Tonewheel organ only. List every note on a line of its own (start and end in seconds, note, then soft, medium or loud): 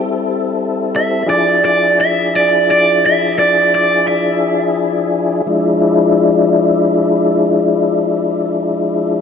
0.00 1.24 G3 medium
0.00 1.24 C4 medium
0.00 1.24 E4 medium
0.00 1.24 A4 medium
1.26 5.42 F3 medium
1.26 5.42 D4 medium
1.26 5.42 E4 medium
1.26 5.42 G#4 medium
5.46 9.21 F3 medium
5.46 9.21 G#3 medium
5.46 9.21 D4 medium
5.46 9.21 E4 medium